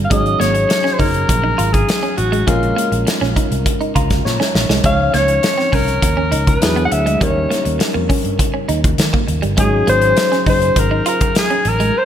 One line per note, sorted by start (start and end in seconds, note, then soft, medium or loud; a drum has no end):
0.04 0.13 F5 medium
0.09 0.35 G#1 loud
0.09 2.43 F#3 medium
0.09 0.22 G#3 medium
0.09 2.43 C#4 medium
0.09 2.44 D#4 medium
0.09 2.44 G#4 medium
0.09 0.41 D#5 loud
0.09 kick medium
0.09 closed hi-hat medium
0.26 closed hi-hat soft
0.40 0.64 G#1 medium
0.40 0.51 A#3 medium
0.40 0.95 C#5 loud
0.40 snare soft
0.40 closed hi-hat medium
0.54 muted clean electric guitar stroke soft
0.54 closed hi-hat soft
0.69 muted clean electric guitar stroke soft
0.69 snare loud
0.69 closed hi-hat medium
0.84 0.95 C#4 medium
0.84 snare soft
0.93 1.01 C5 medium
0.99 1.24 F#1 medium
0.99 1.10 D#4 medium
0.99 1.75 A#4 medium
0.99 kick medium
0.99 open hi-hat medium
1.14 closed hi-hat soft
1.29 1.53 A#1 medium
1.29 muted clean electric guitar stroke soft
1.29 kick medium
1.29 closed hi-hat medium
1.44 1.55 D#4 medium
1.58 1.83 G#1 loud
1.58 1.70 F4 medium
1.58 closed hi-hat medium
1.73 2.17 G#4 medium
1.73 kick medium
1.73 closed hi-hat soft
1.89 snare loud
1.89 closed hi-hat medium
2.03 2.14 C#4 medium
2.03 closed hi-hat soft
2.17 2.42 A1 medium
2.17 2.49 F#4 medium
2.17 muted clean electric guitar stroke soft
2.17 closed hi-hat medium
2.32 2.44 G#3 medium
2.32 closed hi-hat soft
2.46 2.72 A#1 medium
2.46 4.80 G#3 medium
2.46 2.58 G#3 medium
2.46 4.80 C#4 medium
2.46 3.07 F4 medium
2.46 4.81 F4 medium
2.46 4.81 A#4 medium
2.46 kick medium
2.46 closed hi-hat medium
2.63 closed hi-hat soft
2.76 2.88 A#3 medium
2.76 closed hi-hat medium
2.92 3.04 A#1 medium
2.92 muted clean electric guitar stroke soft
2.92 closed hi-hat soft
3.07 muted clean electric guitar stroke soft
3.07 snare loud
3.07 closed hi-hat medium
3.21 3.34 A#1 medium
3.21 3.33 C#4 medium
3.21 snare soft
3.36 3.47 D#4 medium
3.36 kick medium
3.36 closed hi-hat medium
3.51 3.63 C2 medium
3.51 closed hi-hat soft
3.66 muted clean electric guitar stroke soft
3.66 kick medium
3.66 closed hi-hat loud
3.81 3.92 D#4 medium
3.81 closed hi-hat soft
3.95 4.20 C#2 medium
3.95 4.07 F4 medium
3.95 4.23 A#5 medium
3.95 kick medium
3.95 closed hi-hat medium
4.10 kick medium
4.10 snare soft
4.10 closed hi-hat soft
4.25 4.37 A#2 medium
4.25 4.80 C#5 medium
4.25 snare medium
4.40 4.51 C#4 medium
4.40 snare medium
4.55 4.67 A#1 medium
4.55 muted clean electric guitar stroke soft
4.55 snare medium
4.69 4.82 C2 medium
4.69 4.81 G#3 medium
4.69 snare medium
4.83 5.08 C#2 medium
4.83 6.58 F3 medium
4.83 4.96 G#3 medium
4.83 6.58 C#4 medium
4.83 6.58 D#4 medium
4.83 6.59 C#5 medium
4.83 5.16 F5 loud
4.83 kick loud
4.83 closed hi-hat medium
5.14 5.38 C#2 loud
5.14 5.25 A#3 medium
5.14 5.76 C#5 loud
5.14 snare soft
5.14 closed hi-hat medium
5.28 muted clean electric guitar stroke soft
5.28 closed hi-hat soft
5.43 muted clean electric guitar stroke soft
5.43 snare loud
5.43 closed hi-hat medium
5.58 5.69 C4 medium
5.58 snare soft
5.72 5.97 C2 medium
5.72 5.84 C#4 medium
5.72 6.50 A#4 medium
5.72 kick medium
5.72 open hi-hat medium
5.88 closed hi-hat soft
6.02 6.34 D#2 medium
6.02 muted clean electric guitar stroke soft
6.02 kick medium
6.02 closed hi-hat medium
6.17 6.28 C#4 medium
6.32 6.56 C#2 medium
6.32 6.43 D#4 medium
6.32 closed hi-hat medium
6.47 6.85 B4 medium
6.47 kick medium
6.47 closed hi-hat medium
6.61 6.86 E2 medium
6.61 7.21 F#3 medium
6.61 7.21 D4 medium
6.61 7.21 E4 medium
6.61 7.21 G#4 medium
6.61 snare loud
6.61 closed hi-hat medium
6.76 6.88 B3 medium
6.76 closed hi-hat soft
6.85 6.94 F#5 medium
6.91 7.16 D2 medium
6.91 7.25 E5 medium
6.91 muted clean electric guitar stroke soft
6.91 closed hi-hat medium
7.06 7.17 G#3 medium
7.06 closed hi-hat soft
7.19 7.45 D#2 medium
7.19 9.53 G3 medium
7.19 7.32 G3 medium
7.19 9.54 C#4 medium
7.19 9.54 D#4 medium
7.19 9.54 A#4 medium
7.19 7.81 C#5 medium
7.19 kick medium
7.19 closed hi-hat medium
7.51 7.62 A#3 medium
7.51 snare soft
7.51 closed hi-hat medium
7.65 7.78 D#2 medium
7.65 muted clean electric guitar stroke soft
7.65 closed hi-hat soft
7.79 muted clean electric guitar stroke soft
7.79 snare loud
7.79 closed hi-hat medium
7.94 8.07 F2 medium
7.94 8.06 A#3 medium
8.09 8.21 C#4 medium
8.09 kick medium
8.09 open hi-hat medium
8.24 8.37 G2 medium
8.24 closed hi-hat medium
8.39 muted clean electric guitar stroke soft
8.39 kick medium
8.39 closed hi-hat medium
8.54 8.65 C#4 medium
8.69 8.93 D#2 medium
8.69 8.80 D#4 medium
8.69 closed hi-hat medium
8.84 kick medium
8.84 closed hi-hat soft
8.98 9.11 D#3 medium
8.98 snare loud
8.98 closed hi-hat medium
9.13 9.24 A#3 medium
9.13 kick medium
9.28 9.41 D#2 medium
9.28 muted clean electric guitar stroke soft
9.28 closed hi-hat medium
9.42 9.58 G1 medium
9.42 9.54 G3 medium
9.42 closed hi-hat soft
9.57 9.82 G#1 loud
9.57 11.90 F#3 medium
9.57 9.69 G#3 medium
9.57 11.91 C#4 medium
9.57 11.91 D#4 medium
9.57 11.92 G#4 medium
9.57 9.86 G#4 medium
9.57 kick loud
9.57 closed hi-hat medium
9.87 10.12 G#1 loud
9.87 9.99 A#3 medium
9.87 10.44 C5 loud
9.87 closed hi-hat medium
10.02 muted clean electric guitar stroke soft
10.02 closed hi-hat soft
10.17 muted clean electric guitar stroke soft
10.17 snare loud
10.17 closed hi-hat medium
10.32 10.43 C#4 medium
10.32 snare soft
10.32 closed hi-hat soft
10.46 10.71 F#1 medium
10.46 10.58 D#4 medium
10.46 10.80 C5 medium
10.46 kick medium
10.46 open hi-hat medium
10.62 closed hi-hat soft
10.76 11.00 G#1 medium
10.76 11.07 A#4 medium
10.76 muted clean electric guitar stroke soft
10.76 kick medium
10.76 closed hi-hat loud
10.91 11.02 D#4 medium
11.06 11.17 F4 medium
11.06 11.35 A#4 medium
11.06 closed hi-hat medium
11.21 kick medium
11.21 closed hi-hat medium
11.35 11.70 G#4 medium
11.35 snare loud
11.35 closed hi-hat medium
11.50 11.62 C#4 medium
11.50 closed hi-hat soft
11.65 11.90 A1 medium
11.65 11.99 A#4 medium
11.65 muted clean electric guitar stroke soft
11.65 closed hi-hat medium
11.80 11.91 G#3 medium
11.80 closed hi-hat soft
11.98 12.05 C5 loud